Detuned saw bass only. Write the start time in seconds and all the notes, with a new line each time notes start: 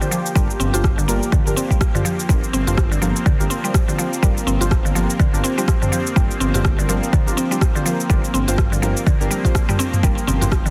0.36 G1
0.60 G1
0.74 G1
1.08 G1
1.46 G1
2.29 G1
2.53 G1
2.67 G1
3.02 G1
3.40 G1
4.23 G1
4.47 G1
4.61 G1
4.95 G1
5.34 G1
6.16 G1
6.40 G1
6.55 G1
6.89 G1
7.27 G1
8.10 G1
8.34 G1
8.48 G1
8.82 G1
9.21 G1
10.03 G1
10.27 G1
10.42 G1